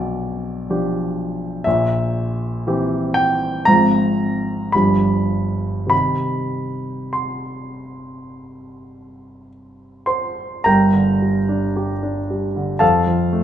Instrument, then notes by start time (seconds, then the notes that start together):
grand piano
Already playing: B1 B2 F3 D4 G4 D5
0.70 F3 D4 G4
1.64 A#1 A#2 E5
2.67 E3 C4 G4
3.14 G5
3.65 G#1 G#2 F3 C4 F4 A#5
4.72 G1 G2 F3 D4 G4 B5
5.87 C3 D#3 D#4 G4 B5
7.13 C6
10.06 C5 C6
10.64 G1 G2 A#4 G5 A#5
10.94 D3
11.22 G3
11.49 D4
11.76 G4
12.03 D4
12.30 G3
12.56 D3
12.79 F2 A4 F5 A5
13.06 F3
13.33 A3